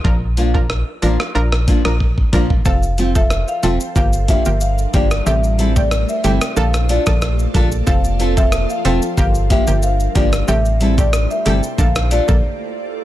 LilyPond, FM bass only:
\new Staff \with { instrumentName = "FM bass" } { \clef bass \time 4/4 \key bes \lydian \tempo 4 = 92 bes,,4~ bes,,16 r16 a,,16 r16 bes,,8. bes,,8. bes,,8 | f,,4~ f,,16 r16 e,,16 r16 g,,8. g,,8. g,,8 | a,,4~ a,,16 r16 g,,16 r16 bes,,8. bes,,8. bes,,8 | f,,4~ f,,16 r16 e,,16 r16 g,,8. g,,8. g,,8 |
a,,4~ a,,16 r16 g,,16 r16 bes,,8. bes,,16 r4 | }